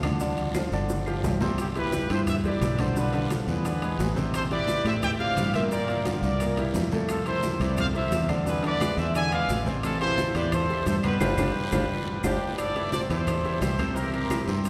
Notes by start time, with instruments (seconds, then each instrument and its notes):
Already playing: fingered electric bass D2
0.03 grand piano D3 D4 D5, high bongo, high conga, high timbale, short guiro, claves, maracas
0.20 grand piano D3 D4 D5, high bongo, high conga, long guiro, maracas
0.37 high bongo, high conga, high timbale, maracas
0.54 grand piano F3 F4 A4, high bongo, high conga, high timbale, short guiro, claves, maracas
0.71 fingered electric bass G1, grand piano D3 D4 D5, high conga, short guiro, maracas
0.89 high bongo, high conga, long guiro, maracas
1.06 grand piano F3 F4 G4, high conga, claves, maracas
1.23 fingered electric bass C2, low bongo, high conga, low timbale, short guiro, maracas
1.41 grand piano C3 C4 C5, low bongo, high conga, low timbale, short guiro, maracas
1.58 trumpet section E4 G4, high bongo, high conga, high timbale, long guiro, maracas
1.75 grand piano E3 E4 G4, trumpet section G4 B4, high bongo, high conga, high timbale, maracas
1.92 high bongo, high conga, short guiro, maracas
2.10 fingered electric bass G2, grand piano E3 E4 G4, trumpet section A4 C5, high conga, high timbale, short guiro, maracas
2.27 trumpet section C5 E5, high bongo, high conga, low conga, high timbale, long guiro, maracas
2.44 grand piano E3 E4 G4, trumpet section B4 D5, high bongo, high conga, low conga, maracas
2.61 fingered electric bass B1, high bongo, low bongo, high conga, high timbale, low timbale, short guiro, maracas
2.78 grand piano D3 D4 D5, trumpet section A4 C5, high bongo, high conga, high timbale, short guiro, maracas
2.96 grand piano D3 D4 D5, trumpet section F4 B4, high bongo, high conga, long guiro, maracas
3.13 grand piano D3 D4 D5, high bongo, high conga, high timbale, maracas
3.30 grand piano F3 F4 A4, high bongo, high conga, high timbale, short guiro, maracas
3.47 fingered electric bass E2, trumpet section G#4 B4, high conga, short guiro, maracas
3.65 grand piano D3 D4 D5, high bongo, high conga, high timbale, long guiro, maracas
3.81 grand piano G#3 G#4 B4, high bongo, high conga, high timbale, maracas
3.99 fingered electric bass A1, high bongo, low bongo, high conga, low timbale, short guiro, maracas
4.16 grand piano C3 C4 C5, high conga, short guiro, maracas
4.33 trumpet section A4 C5, high bongo, high conga, high timbale, long guiro, maracas
4.51 grand piano E3 E4 G4, trumpet section B4 D5, high bongo, high conga, high timbale, maracas
4.68 high bongo, high conga, short guiro, maracas
4.85 fingered electric bass A2, grand piano E3 E4 G4, trumpet section C5 E5, high conga, high timbale, short guiro, maracas
5.03 trumpet section E5 G5, high bongo, high conga, low conga, high timbale, long guiro, maracas
5.20 grand piano E3 C4 G4, trumpet section D5 F5, high bongo, high conga, maracas
5.37 fingered electric bass G2, high bongo, low bongo, high conga, high timbale, short guiro, maracas
5.54 grand piano A#2 A#3 A#4, trumpet section C5 E5, high bongo, high conga, high timbale, short guiro, maracas
5.71 grand piano A#2 A#3 A#4, trumpet section A#4 D5, high bongo, high conga, long guiro, maracas
5.88 grand piano A#2 A#3 A#4, high bongo, high conga, high timbale, maracas
6.05 grand piano D3 D4 F4, high bongo, high conga, high timbale, short guiro, maracas
6.22 fingered electric bass C2, trumpet section A#4 D5, high conga, short guiro, maracas
6.40 grand piano A#2 A#3 A#4, high bongo, high conga, high timbale, long guiro, maracas
6.57 grand piano E3 E4 G4, high bongo, high conga, high timbale, maracas
6.74 fingered electric bass F2, high bongo, low bongo, high conga, short guiro, maracas
6.92 grand piano A2 A3 A4, high conga, short guiro, maracas
7.09 trumpet section F4 A4, high bongo, high conga, high timbale, long guiro, claves, maracas
7.26 grand piano C3 C4 E4, trumpet section A4 C5, high bongo, high conga, high timbale, maracas
7.43 high bongo, high conga, short guiro, maracas
7.60 fingered electric bass C2, grand piano C3 C4 E4, trumpet section B4 D5, high conga, high timbale, short guiro, maracas
7.77 trumpet section C5 F5, high bongo, high conga, low conga, high timbale, long guiro, claves, maracas
7.95 grand piano C3 C4 E4, trumpet section C5 E5, high bongo, high conga, maracas
8.11 fingered electric bass E2, high bongo, low bongo, high conga, high timbale, low timbale, short guiro, maracas
8.29 grand piano D3 D4 D5, high bongo, high conga, high timbale, short guiro, claves, maracas
8.45 grand piano D3 D4 D5, trumpet section G#4 B4, high bongo, high conga, long guiro, maracas
8.63 grand piano D3 D4 D5, trumpet section B4 D5, high bongo, high conga, high timbale, maracas
8.80 grand piano G#3 G#4 B4, high bongo, high conga, high timbale, short guiro, claves, maracas
8.97 fingered electric bass E2, trumpet section C5 E5, high conga, short guiro, maracas
9.15 grand piano D3 D4 D5, trumpet section E5 G#5, high bongo, high conga, high timbale, long guiro, maracas
9.32 grand piano G#3 G#4 B4, trumpet section D5 F5, high conga, high timbale, claves, maracas
9.48 fingered electric bass A1, high bongo, low bongo, high conga, short guiro, maracas
9.66 grand piano C3 C4 C5, high conga, short guiro, maracas
9.83 trumpet section E4 A4, high bongo, high conga, high timbale, long guiro, claves, maracas
10.00 grand piano E3 E4 G4, trumpet section A4 C5, high bongo, high conga, high timbale, maracas
10.18 high bongo, high conga, short guiro, maracas
10.35 fingered electric bass E2, grand piano E3 E4 G4, trumpet section B4 D5, high conga, high timbale, short guiro, maracas
10.52 trumpet section A4 C5, high bongo, high conga, low conga, high timbale, long guiro, claves, maracas
10.69 grand piano E3 E4 G4, high bongo, high conga, maracas
10.86 fingered electric bass G2, trumpet section A4 C5, high bongo, low bongo, high conga, high timbale, short guiro, maracas
11.03 grand piano B2 B3 B4, trumpet section G4 B4, high bongo, high conga, high timbale, short guiro, claves, maracas
11.20 fingered electric bass G1, grand piano D4 F4 G4, high bongo, high conga, high timbale, long guiro, claves, maracas
11.38 fingered electric bass G1, grand piano D4 F4 G4, high bongo, high conga, high timbale, long guiro, claves, maracas
11.72 fingered electric bass G1, grand piano D4 F4 G4, high bongo, high conga, high timbale, long guiro, claves, maracas
12.23 fingered electric bass G1, grand piano D4 F4 G4, trumpet section D4 G4, high bongo, high conga, high timbale, long guiro, claves, maracas
12.58 trumpet section A4 D5, high bongo, high conga, high timbale, long guiro, claves, maracas
12.75 grand piano E3 E4 G4, high bongo, high conga, high timbale, maracas
12.92 grand piano C3 C4 C5, trumpet section A4 D5, high bongo, high conga, short guiro, maracas
13.09 fingered electric bass E2, grand piano E3 E4 G4, trumpet section A4 C5, high conga, high timbale, short guiro, maracas
13.27 high bongo, high conga, low conga, high timbale, long guiro, claves, maracas
13.44 grand piano E3 E4 G4, high bongo, high conga, maracas
13.61 fingered electric bass C2, trumpet section A4 C5, high bongo, low bongo, high conga, high timbale, short guiro, maracas
13.78 grand piano C3 C4 C5, high bongo, high conga, high timbale, short guiro, claves, maracas
13.95 grand piano C3 C4 C5, trumpet section G4 A#4, high bongo, high conga, long guiro, maracas
14.12 trumpet section G4 A#4, high bongo, high conga, high timbale, maracas
14.30 grand piano E3 E4 G4, high bongo, high conga, high timbale, short guiro, claves, maracas
14.47 fingered electric bass G2, grand piano C3 C4 C5, high conga, short guiro, maracas
14.65 high bongo, high conga, high timbale, long guiro, maracas